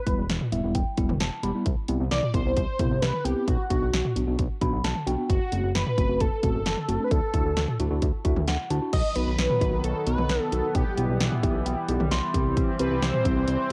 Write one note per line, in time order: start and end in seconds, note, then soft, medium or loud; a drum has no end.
0.00 0.26 B4 medium
0.07 0.16 E1 medium
0.07 0.21 G3 medium
0.07 0.21 B3 medium
0.07 0.21 E4 medium
0.07 kick medium
0.07 closed hi-hat medium
0.18 0.28 E1 medium
0.29 0.39 E1 loud
0.29 snare loud
0.29 closed hi-hat medium
0.41 mid tom medium
0.52 0.62 E1 medium
0.52 0.59 G3 medium
0.52 0.59 B3 medium
0.52 0.59 E4 medium
0.52 0.73 E5 medium
0.52 closed hi-hat medium
0.64 0.73 E1 medium
0.64 0.78 G3 medium
0.64 0.78 B3 medium
0.64 0.78 E4 medium
0.75 0.85 E1 loud
0.75 1.17 G5 medium
0.75 kick medium
0.75 closed hi-hat medium
0.97 1.07 E1 medium
0.97 1.12 G3 medium
0.97 1.12 B3 medium
0.97 1.12 E4 loud
0.97 kick medium
0.97 closed hi-hat medium
1.09 1.19 E1 loud
1.09 mid tom medium
1.20 1.30 E1 loud
1.20 1.42 A5 medium
1.20 snare loud
1.20 closed hi-hat medium
1.43 1.53 E1 loud
1.43 1.50 G3 medium
1.43 1.50 B3 medium
1.43 1.50 G4 loud
1.43 1.64 B5 medium
1.43 closed hi-hat medium
1.55 1.66 G3 medium
1.55 1.66 B3 medium
1.55 1.66 E4 medium
1.66 1.76 C2 loud
1.66 kick loud
1.66 closed hi-hat medium
1.88 1.98 C2 loud
1.88 2.03 B3 medium
1.88 2.03 C4 medium
1.88 2.03 E4 medium
1.88 closed hi-hat medium
2.00 2.10 C2 loud
2.11 2.21 C2 loud
2.11 2.36 D5 loud
2.11 snare loud
2.11 closed hi-hat medium
2.23 mid tom medium
2.34 2.44 C2 medium
2.34 2.41 B3 medium
2.34 2.41 C4 medium
2.34 2.41 E4 medium
2.34 3.01 C5 loud
2.34 kick loud
2.34 closed hi-hat medium
2.45 2.55 C2 medium
2.45 2.60 B3 medium
2.45 2.60 C4 medium
2.45 2.60 E4 medium
2.57 2.67 C2 loud
2.57 kick medium
2.57 closed hi-hat medium
2.79 2.89 C2 medium
2.79 2.94 B3 medium
2.79 2.94 C4 medium
2.79 2.94 E4 medium
2.79 kick medium
2.79 closed hi-hat medium
2.79 mid tom medium
2.91 3.01 C2 medium
3.02 3.12 C2 loud
3.02 3.26 B4 loud
3.02 snare loud
3.02 closed hi-hat medium
3.13 mid tom medium
3.24 3.35 C2 loud
3.24 3.32 B3 medium
3.24 3.32 C4 medium
3.24 3.32 E4 medium
3.24 3.49 G4 medium
3.24 closed hi-hat medium
3.36 3.48 B3 medium
3.36 3.48 C4 medium
3.36 3.48 E4 medium
3.47 3.57 B1 loud
3.47 3.69 F#4 medium
3.47 kick loud
3.47 closed hi-hat medium
3.70 3.80 B1 loud
3.70 3.85 B3 medium
3.70 3.85 D4 medium
3.70 4.12 F#4 medium
3.70 3.85 F#4 medium
3.70 kick medium
3.70 closed hi-hat medium
3.82 3.92 B1 medium
3.93 4.03 B1 loud
3.93 snare loud
3.93 closed hi-hat medium
4.05 mid tom medium
4.16 4.26 B1 medium
4.16 4.23 B3 medium
4.16 4.23 D4 medium
4.16 4.23 F#4 medium
4.16 closed hi-hat medium
4.27 4.37 B1 loud
4.27 4.42 B3 medium
4.27 4.42 D4 medium
4.27 4.42 F#4 medium
4.39 4.48 B1 loud
4.39 kick medium
4.39 closed hi-hat medium
4.61 4.71 B1 medium
4.61 4.76 B3 medium
4.61 4.76 D4 medium
4.61 4.76 F#4 loud
4.61 4.83 B5 medium
4.61 kick medium
4.61 closed hi-hat medium
4.61 mid tom medium
4.73 4.82 B1 loud
4.84 4.94 B1 loud
4.84 5.05 A5 medium
4.84 snare loud
4.84 closed hi-hat medium
4.95 mid tom medium
5.07 5.16 B1 loud
5.07 5.14 B3 medium
5.07 5.14 D4 medium
5.07 5.14 F#4 loud
5.07 5.28 G5 medium
5.07 closed hi-hat medium
5.18 5.30 B3 medium
5.18 5.30 D4 medium
5.18 5.30 F#4 medium
5.29 5.39 F#1 loud
5.29 5.72 F#4 loud
5.29 kick loud
5.29 closed hi-hat medium
5.52 5.62 F#1 loud
5.52 5.67 A3 medium
5.52 5.67 C4 medium
5.52 5.67 F#4 medium
5.52 closed hi-hat medium
5.64 5.73 F#1 medium
5.75 5.85 F#1 loud
5.75 6.22 B4 loud
5.75 snare loud
5.75 closed hi-hat medium
5.86 mid tom loud
5.98 6.07 F#1 loud
5.98 6.05 A3 medium
5.98 6.05 C4 medium
5.98 6.05 F#4 medium
5.98 kick loud
5.98 closed hi-hat medium
6.09 6.19 F#1 loud
6.09 6.23 A3 medium
6.09 6.23 C4 medium
6.09 6.23 F#4 medium
6.20 6.30 F#1 loud
6.20 7.04 A4 loud
6.20 kick medium
6.20 closed hi-hat medium
6.43 6.53 F#1 loud
6.43 6.57 A3 medium
6.43 6.57 C4 medium
6.43 6.57 F#4 medium
6.43 kick medium
6.43 closed hi-hat medium
6.43 mid tom medium
6.55 6.64 F#1 loud
6.66 6.76 F#1 loud
6.66 snare loud
6.66 closed hi-hat medium
6.77 mid tom medium
6.88 6.98 F#1 loud
6.88 6.96 A3 medium
6.88 6.96 C4 medium
6.88 6.96 F#4 loud
6.88 closed hi-hat medium
7.00 7.11 A3 medium
7.00 7.11 C4 medium
7.00 7.11 D4 medium
7.04 7.13 B4 medium
7.11 7.21 D2 loud
7.11 8.02 A4 loud
7.11 kick loud
7.11 closed hi-hat medium
7.34 7.44 D2 loud
7.34 7.48 D4 medium
7.34 7.48 E4 medium
7.34 7.48 F#4 medium
7.34 kick medium
7.34 closed hi-hat medium
7.45 7.55 D2 medium
7.57 7.66 D2 loud
7.57 snare loud
7.57 closed hi-hat medium
7.68 mid tom medium
7.79 7.89 D2 loud
7.79 7.87 D4 medium
7.79 7.87 E4 medium
7.79 7.87 F#4 medium
7.79 closed hi-hat medium
7.91 8.01 D2 medium
7.91 8.05 D4 medium
7.91 8.05 E4 medium
7.91 8.05 F#4 medium
8.02 8.12 D2 loud
8.02 kick medium
8.02 closed hi-hat medium
8.25 8.35 D2 loud
8.25 8.39 D4 medium
8.25 8.39 E4 medium
8.25 8.39 F#4 loud
8.25 8.46 E5 medium
8.25 kick medium
8.25 closed hi-hat medium
8.36 8.46 D2 loud
8.36 mid tom medium
8.48 8.57 D2 loud
8.48 8.69 F#5 medium
8.48 snare loud
8.48 closed hi-hat medium
8.70 8.80 D2 loud
8.70 8.78 D4 medium
8.70 8.78 E4 medium
8.70 8.78 F#4 medium
8.70 8.92 A5 medium
8.70 closed hi-hat medium
8.82 8.93 D4 medium
8.82 8.93 E4 medium
8.82 8.93 F#4 medium
8.93 9.03 B1 loud
8.93 10.73 D#3 medium
8.93 10.73 F#3 medium
8.93 12.31 B3 medium
8.93 9.17 D#5 loud
8.93 kick loud
8.93 closed hi-hat medium
8.93 crash medium
9.15 9.26 B1 loud
9.15 9.30 B3 medium
9.15 9.30 D#4 medium
9.15 9.30 F#4 medium
9.15 9.86 B4 loud
9.15 closed hi-hat medium
9.27 9.37 B1 loud
9.38 9.48 B1 loud
9.38 snare loud
9.38 closed hi-hat medium
9.50 mid tom medium
9.61 9.71 B1 loud
9.61 9.76 B3 medium
9.61 9.76 D#4 medium
9.61 9.76 F#4 medium
9.61 kick loud
9.61 closed hi-hat medium
9.73 9.82 B1 medium
9.84 9.94 B1 loud
9.84 10.06 A4 loud
9.84 closed hi-hat medium
10.07 10.17 B1 loud
10.07 10.21 B3 medium
10.07 10.21 D#4 medium
10.07 10.21 F#4 medium
10.07 10.42 B4 loud
10.07 closed hi-hat medium
10.18 10.28 B1 medium
10.18 mid tom medium
10.29 10.39 B1 loud
10.29 snare loud
10.29 closed hi-hat medium
10.42 10.52 A4 loud
10.52 10.62 B1 loud
10.52 10.67 B3 medium
10.52 10.67 D#4 medium
10.52 10.67 F#4 medium
10.52 10.75 A4 medium
10.52 closed hi-hat medium
10.75 10.85 B1 loud
10.75 12.32 E3 medium
10.75 13.72 G3 medium
10.75 11.17 G4 medium
10.75 kick loud
10.75 closed hi-hat medium
10.97 11.07 B1 loud
10.97 11.12 B3 medium
10.97 11.12 E4 medium
10.97 11.12 G4 medium
10.97 closed hi-hat medium
11.09 11.19 B1 loud
11.20 11.30 B1 loud
11.20 snare loud
11.20 closed hi-hat medium
11.32 mid tom loud
11.43 11.53 B1 loud
11.43 11.58 B3 medium
11.43 11.58 E4 medium
11.43 11.58 G4 loud
11.43 11.64 E5 medium
11.43 kick loud
11.43 closed hi-hat medium
11.54 11.64 B1 loud
11.66 11.75 B1 loud
11.66 12.08 G5 medium
11.66 closed hi-hat medium
11.89 11.98 B1 loud
11.89 12.03 B3 medium
11.89 12.03 E4 medium
11.89 12.03 G4 loud
11.89 closed hi-hat medium
12.00 12.10 B1 medium
12.00 mid tom medium
12.11 12.21 B1 loud
12.11 12.54 C6 medium
12.11 snare loud
12.11 closed hi-hat medium
12.34 12.63 C2 medium
12.34 13.72 E3 medium
12.34 12.70 C4 medium
12.34 13.72 C4 medium
12.34 12.70 E4 medium
12.34 12.70 G4 loud
12.34 kick loud
12.34 closed hi-hat medium
12.57 kick loud
12.57 closed hi-hat medium
12.79 12.89 C2 loud
12.79 12.94 C4 medium
12.79 12.94 E4 medium
12.79 12.94 G4 medium
12.79 13.04 B4 medium
12.79 closed hi-hat medium
12.91 13.01 C2 medium
13.02 13.12 C2 loud
13.02 13.47 C5 medium
13.02 snare loud
13.02 closed hi-hat medium
13.14 mid tom loud
13.25 13.35 C2 loud
13.25 13.39 C4 medium
13.25 13.39 E4 medium
13.25 13.39 G4 medium
13.25 kick loud
13.25 closed hi-hat medium
13.36 13.46 C2 medium
13.48 13.57 C2 loud
13.48 13.72 C5 medium
13.48 closed hi-hat medium